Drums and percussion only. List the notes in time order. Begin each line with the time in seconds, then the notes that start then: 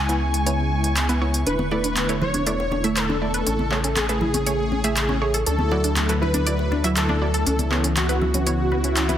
0.09 closed hi-hat
0.34 closed hi-hat
0.47 closed hi-hat
0.84 closed hi-hat
0.96 clap, closed hi-hat
1.09 closed hi-hat
1.34 closed hi-hat
1.47 closed hi-hat
1.59 high conga
1.71 high bongo
1.84 closed hi-hat
1.96 clap, closed hi-hat, high conga
2.09 closed hi-hat
2.22 low conga
2.34 closed hi-hat, high conga
2.47 closed hi-hat
2.60 high bongo
2.71 high bongo, high conga
2.84 closed hi-hat
2.97 clap, closed hi-hat
3.10 high conga
3.34 closed hi-hat
3.47 closed hi-hat
3.59 high conga
3.71 clap, high bongo
3.84 closed hi-hat
3.96 clap, closed hi-hat, high conga
4.09 closed hi-hat
4.21 low conga
4.34 closed hi-hat, high conga
4.46 closed hi-hat
4.72 high conga
4.84 closed hi-hat
4.97 clap, closed hi-hat
5.09 high conga
5.34 closed hi-hat
5.46 closed hi-hat
5.59 high conga
5.71 high bongo
5.84 closed hi-hat
5.96 clap, closed hi-hat, high conga
6.09 closed hi-hat
6.23 low conga
6.34 closed hi-hat, high conga
6.47 closed hi-hat
6.59 high bongo
6.71 high bongo, high conga
6.84 closed hi-hat
6.96 clap, closed hi-hat
7.09 high conga
7.34 closed hi-hat
7.47 closed hi-hat
7.59 closed hi-hat, high conga
7.71 clap, high bongo
7.84 closed hi-hat
7.97 clap, closed hi-hat, high conga
8.09 closed hi-hat
8.22 low conga
8.34 closed hi-hat, high conga, low conga
8.47 closed hi-hat
8.72 high conga
8.84 closed hi-hat
8.97 clap, closed hi-hat
9.09 closed hi-hat, high conga